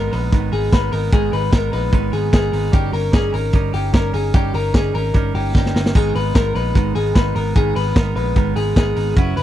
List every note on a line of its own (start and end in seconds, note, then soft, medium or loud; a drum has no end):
0.00 0.12 G#3 medium
0.00 0.13 B3 medium
0.00 0.12 D#4 medium
0.00 0.10 A#4 medium
0.00 0.13 A#4 loud
0.12 0.29 A#1 medium
0.12 0.32 G#3 soft
0.12 0.32 B3 medium
0.12 0.33 D#4 medium
0.12 0.32 A#4 medium
0.12 0.50 B4 medium
0.12 open hi-hat medium
0.32 0.49 G#1 loud
0.32 0.52 G#2 medium
0.32 0.52 D#3 medium
0.32 0.53 G#3 medium
0.32 0.53 B3 medium
0.32 0.52 D#4 medium
0.32 0.51 A#4 loud
0.32 kick loud
0.32 hi-hat pedal medium
0.32 ride medium
0.52 0.69 G#1 loud
0.52 0.71 G#3 soft
0.52 0.72 B3 medium
0.52 0.73 D#4 medium
0.52 0.72 G#4 medium
0.52 0.72 A#4 medium
0.52 open hi-hat medium
0.72 0.89 G#1 loud
0.72 0.92 G#3 medium
0.72 0.93 B3 medium
0.72 0.92 D#4 medium
0.72 0.91 A#4 medium
0.72 0.92 B4 medium
0.72 kick loud
0.72 snare medium
0.72 hi-hat pedal medium
0.72 ride medium
0.92 1.09 G#1 loud
0.92 1.12 G#3 soft
0.92 1.13 B3 medium
0.92 1.13 D#4 medium
0.92 1.12 A#4 medium
0.92 1.13 A#4 medium
0.92 open hi-hat medium
1.12 1.29 G#1 loud
1.12 1.33 G#2 medium
1.12 1.33 D#3 medium
1.12 1.33 G#3 loud
1.12 1.33 B3 medium
1.12 1.32 D#4 medium
1.12 1.33 G#4 loud
1.12 1.31 A#4 loud
1.12 kick loud
1.12 hi-hat pedal medium
1.12 ride medium
1.32 1.49 G#1 loud
1.32 1.51 G#3 medium
1.32 1.52 B3 medium
1.32 1.53 D#4 medium
1.32 1.52 A#4 medium
1.32 1.53 B4 medium
1.32 open hi-hat medium
1.52 1.69 G#1 loud
1.52 1.72 G#3 medium
1.52 1.73 B3 medium
1.52 1.72 D#4 medium
1.52 1.73 A#4 medium
1.52 1.71 A#4 medium
1.52 kick loud
1.52 snare loud
1.52 hi-hat pedal medium
1.52 ride medium
1.72 1.89 A#1 medium
1.72 1.92 G#3 medium
1.72 1.92 B3 medium
1.72 1.93 D#4 medium
1.72 1.93 A#4 medium
1.72 2.11 B4 medium
1.72 open hi-hat medium
1.92 2.09 G#1 loud
1.92 2.13 G#2 medium
1.92 2.13 D#3 medium
1.92 2.13 G#3 medium
1.92 2.13 B3 loud
1.92 2.12 D#4 loud
1.92 2.11 A#4 medium
1.92 kick loud
1.92 hi-hat pedal medium
1.92 ride medium
2.12 2.29 G#1 loud
2.12 2.31 G#3 medium
2.12 2.32 B3 medium
2.12 2.33 D#4 medium
2.12 2.32 G#4 medium
2.12 2.33 A#4 medium
2.12 open hi-hat medium
2.32 2.50 G#1 loud
2.32 2.53 G#3 medium
2.32 2.53 B3 medium
2.32 2.52 D#4 medium
2.32 2.71 G#4 medium
2.32 2.51 A#4 medium
2.32 kick loud
2.32 snare loud
2.32 hi-hat pedal medium
2.32 ride medium
2.52 2.69 G#1 loud
2.52 2.72 G#3 soft
2.52 2.73 B3 medium
2.52 2.72 D#4 medium
2.52 2.73 A#4 medium
2.52 open hi-hat medium
2.72 2.90 G1 loud
2.72 2.93 G3 medium
2.72 2.93 C#4 medium
2.72 2.93 D#4 medium
2.72 2.93 G4 medium
2.72 2.91 A#4 loud
2.72 kick loud
2.72 hi-hat pedal medium
2.72 ride medium
2.93 3.10 G1 loud
2.93 3.12 C#4 soft
2.93 3.13 D#4 medium
2.93 3.13 A#4 medium
2.93 3.14 A#4 medium
2.93 open hi-hat medium
3.12 3.30 G1 loud
3.12 3.33 G3 medium
3.12 3.34 C#4 medium
3.12 3.34 D#4 medium
3.12 3.34 G#4 loud
3.12 3.31 A#4 medium
3.12 kick loud
3.12 snare loud
3.12 hi-hat pedal medium
3.12 ride medium
3.33 3.50 G#1 medium
3.33 3.53 C#4 soft
3.33 3.54 D#4 medium
3.33 3.53 A#4 medium
3.33 3.72 A#4 medium
3.33 open hi-hat medium
3.53 3.70 G1 loud
3.53 3.74 G3 medium
3.53 3.74 C#4 medium
3.53 3.74 D#4 loud
3.53 3.72 A#4 loud
3.53 kick loud
3.53 hi-hat pedal medium
3.53 ride medium
3.73 3.90 G1 loud
3.73 3.93 C#4 medium
3.73 3.94 D#4 medium
3.73 3.94 G4 medium
3.73 3.93 A#4 medium
3.73 open hi-hat medium
3.93 4.10 G1 loud
3.93 4.14 G3 medium
3.93 4.14 C#4 medium
3.93 4.14 D#4 medium
3.93 4.14 A#4 medium
3.93 4.12 A#4 medium
3.93 kick loud
3.93 snare loud
3.93 hi-hat pedal medium
3.93 ride medium
4.13 4.30 G1 loud
4.13 4.34 C#4 soft
4.13 4.35 D#4 medium
4.13 4.34 G#4 medium
4.13 4.34 A#4 medium
4.13 open hi-hat medium
4.34 4.51 G1 loud
4.34 4.54 G3 medium
4.34 4.55 C#4 medium
4.34 4.54 D#4 loud
4.34 4.54 G4 loud
4.34 4.52 A#4 medium
4.34 kick loud
4.34 hi-hat pedal medium
4.34 ride medium
4.54 4.71 G1 loud
4.54 4.74 C#4 soft
4.54 4.75 D#4 medium
4.54 4.74 A#4 medium
4.54 open hi-hat medium
4.74 4.91 G1 loud
4.74 4.94 G3 medium
4.74 4.95 C#4 medium
4.74 4.95 D#4 medium
4.74 4.95 G#4 medium
4.74 4.93 A#4 medium
4.74 kick loud
4.74 snare loud
4.74 hi-hat pedal medium
4.74 ride medium
4.94 5.11 G#1 medium
4.94 5.13 C#4 soft
4.94 5.14 D#4 medium
4.94 5.14 A#4 medium
4.94 5.33 A#4 medium
4.94 open hi-hat medium
5.14 5.31 G1 loud
5.14 5.34 G3 medium
5.14 5.35 C#4 medium
5.14 5.35 D#4 loud
5.14 5.33 A#4 medium
5.14 kick medium
5.14 hi-hat pedal medium
5.14 ride medium
5.34 5.51 G1 loud
5.34 5.55 C#4 medium
5.34 5.56 D#4 medium
5.34 5.54 G4 medium
5.34 5.55 A#4 medium
5.34 open hi-hat medium
5.55 5.71 G1 loud
5.55 5.75 G3 medium
5.55 5.75 C#4 medium
5.55 5.75 D#4 medium
5.55 5.93 G4 medium
5.55 5.73 A#4 medium
5.55 kick loud
5.55 snare medium
5.66 snare medium
5.75 5.91 G1 loud
5.75 5.96 C#4 soft
5.75 5.95 D#4 medium
5.75 5.95 A#4 medium
5.75 snare loud
5.86 snare loud
5.95 6.12 G#1 loud
5.95 6.15 G#2 medium
5.95 6.15 D#3 medium
5.95 6.16 G#3 medium
5.95 6.16 B3 medium
5.95 6.15 D#4 loud
5.95 6.15 G#4 loud
5.95 6.14 A#4 loud
5.95 kick loud
5.95 splash medium
6.15 6.32 G#1 loud
6.15 6.33 G#3 soft
6.15 6.35 B3 medium
6.15 6.36 D#4 medium
6.15 6.35 A#4 medium
6.15 6.35 B4 medium
6.15 open hi-hat medium
6.35 6.52 G#1 loud
6.35 6.55 G#3 medium
6.35 6.56 B3 medium
6.35 6.55 D#4 medium
6.35 6.55 A#4 loud
6.35 6.53 A#4 medium
6.35 kick loud
6.35 snare loud
6.35 hi-hat pedal medium
6.35 ride medium
6.55 6.72 A#1 medium
6.55 6.75 G#3 soft
6.55 6.75 B3 soft
6.55 6.75 D#4 medium
6.55 6.75 A#4 medium
6.55 6.93 B4 medium
6.55 open hi-hat medium
6.74 6.92 G#1 loud
6.74 6.95 G#2 medium
6.74 6.95 D#3 medium
6.74 6.96 G#3 medium
6.74 6.96 B3 loud
6.74 6.95 D#4 loud
6.74 6.94 A#4 loud
6.74 kick loud
6.74 hi-hat pedal medium
6.74 ride medium
6.95 7.12 G#1 loud
6.95 7.14 G#3 medium
6.95 7.15 B3 medium
6.95 7.16 D#4 medium
6.95 7.15 G#4 medium
6.95 7.16 A#4 medium
6.95 open hi-hat medium
7.15 7.32 G#1 medium
7.15 7.36 G#3 medium
7.15 7.36 B3 medium
7.15 7.35 D#4 medium
7.15 7.34 A#4 medium
7.15 7.35 B4 medium
7.15 kick loud
7.15 snare loud
7.15 hi-hat pedal medium
7.15 ride medium
7.35 7.52 G#1 loud
7.35 7.55 G#3 medium
7.35 7.55 B3 medium
7.35 7.56 D#4 medium
7.35 7.56 A#4 medium
7.35 open hi-hat medium
7.55 7.72 G#1 loud
7.55 7.76 G#2 medium
7.55 7.76 D#3 medium
7.55 7.76 G#3 medium
7.55 7.76 B3 medium
7.55 7.75 D#4 loud
7.55 7.76 G#4 loud
7.55 7.74 A#4 medium
7.55 kick loud
7.55 hi-hat pedal medium
7.55 ride medium
7.75 7.92 G#1 loud
7.75 7.94 G#3 soft
7.75 7.95 B3 medium
7.75 7.96 D#4 medium
7.75 7.96 A#4 medium
7.75 7.96 B4 medium
7.75 open hi-hat medium
7.95 8.13 G#1 loud
7.95 8.16 G#3 medium
7.95 8.16 B3 medium
7.95 8.15 D#4 medium
7.95 8.16 A#4 medium
7.95 8.14 A#4 medium
7.95 kick loud
7.95 snare loud
7.95 hi-hat pedal medium
7.95 ride medium
8.16 8.33 A#1 medium
8.16 8.35 G#3 medium
8.16 8.36 B3 medium
8.16 8.36 D#4 medium
8.16 8.36 A#4 medium
8.16 8.54 B4 medium
8.16 open hi-hat medium
8.36 8.53 G#1 loud
8.36 8.56 G#2 medium
8.36 8.56 D#3 medium
8.36 8.57 G#3 medium
8.36 8.57 B3 loud
8.36 8.56 D#4 medium
8.36 8.54 A#4 loud
8.36 kick loud
8.36 hi-hat pedal medium
8.36 ride medium
8.56 8.73 G#1 loud
8.56 8.75 G#3 medium
8.56 8.76 B3 medium
8.56 8.77 D#4 medium
8.56 8.75 G#4 medium
8.56 8.76 A#4 medium
8.56 open hi-hat medium
8.76 8.93 G#1 medium
8.76 8.96 G#3 medium
8.76 8.97 B3 medium
8.76 8.96 D#4 medium
8.76 9.17 G#4 medium
8.76 8.95 A#4 medium
8.76 kick loud
8.76 snare loud
8.76 hi-hat pedal medium
8.76 ride medium
8.96 9.13 G#1 loud
8.96 9.16 G#3 medium
8.96 9.17 B3 medium
8.96 9.17 D#4 medium
8.96 9.17 A#4 medium
8.96 open hi-hat medium
9.16 9.33 F#1 loud
9.16 9.37 F#3 medium
9.16 9.37 C#4 loud
9.16 9.37 E4 medium
9.16 9.36 F#4 loud
9.16 9.35 B4 medium
9.16 kick loud
9.16 hi-hat pedal medium
9.16 ride medium
9.36 9.43 F#1 loud
9.36 9.43 C#4 medium
9.36 9.43 E4 medium
9.36 9.43 B4 medium
9.36 open hi-hat medium